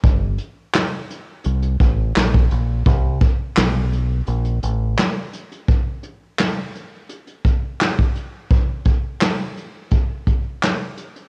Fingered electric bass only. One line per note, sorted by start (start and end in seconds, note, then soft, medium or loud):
0.04 0.36 G1 loud
1.46 1.77 C2 loud
1.80 2.12 A1 medium
2.16 2.47 A#1 medium
2.52 2.83 A#1 medium
2.86 3.18 C2 medium
3.57 4.20 B1 loud
4.28 4.59 A#1 loud
4.63 4.94 A1 medium